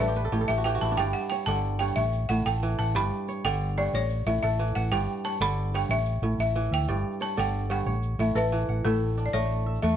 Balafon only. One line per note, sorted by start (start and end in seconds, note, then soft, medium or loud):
0.48 0.65 E5 medium
0.64 0.82 G5 medium
0.81 0.98 A5 medium
0.97 1.15 G5 loud
1.13 1.21 F#5 medium
1.30 1.47 G5 medium
1.46 1.81 A5 medium
1.79 1.97 G5 medium
1.96 2.11 E5 medium
2.29 2.46 F#5 medium
2.46 2.80 G5 loud
2.79 2.95 A5 medium
2.96 3.46 B5 loud
3.45 3.78 G5 loud
3.78 3.94 D5 medium
3.95 4.28 C#5 medium
4.27 4.41 E5 medium
4.43 4.50 E5 medium
4.75 4.83 F#5 medium
4.92 5.22 G5 loud
5.25 5.40 A5 medium
5.42 5.75 B5 loud
5.75 5.91 G5 medium
5.91 6.21 E5 medium
6.40 6.73 E5 medium
6.74 7.23 G5 medium
7.22 7.29 A5 medium
7.39 7.72 G5 medium
7.71 8.17 F#5 medium
8.20 8.27 E5 medium
8.36 8.87 B4 medium
8.36 8.67 E5 medium
8.85 9.28 A4 medium
9.26 9.34 D5 medium
9.33 9.80 C#5 medium
9.82 9.97 E5 medium